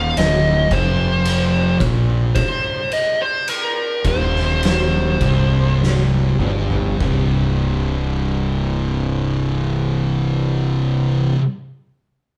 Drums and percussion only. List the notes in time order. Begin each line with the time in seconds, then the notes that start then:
0.17 snare, ride
0.71 kick, ride
1.25 ride
1.80 kick, ride
2.36 kick, ride
2.92 ride
3.48 ride
4.05 kick, ride
4.36 snare
4.63 snare, ride
5.21 kick, ride
5.83 snare
6.40 mid tom
6.70 floor tom
7.00 kick